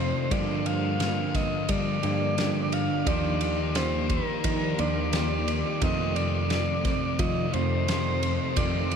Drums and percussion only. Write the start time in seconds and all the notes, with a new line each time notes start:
0.31 kick, ride
0.66 ride
1.00 snare, ride
1.35 kick, snare, ride
1.69 kick, ride
2.03 ride
2.38 snare, ride
2.72 ride
3.07 kick, ride
3.41 ride
3.75 snare, ride
4.10 kick, ride
4.44 kick, ride
4.79 ride
5.13 snare, ride
5.48 ride
5.82 kick, ride
6.16 ride
6.50 snare, ride
6.85 kick, snare, ride
7.19 kick, ride
7.54 ride
7.88 snare, ride
8.23 ride
8.57 kick, ride
8.91 ride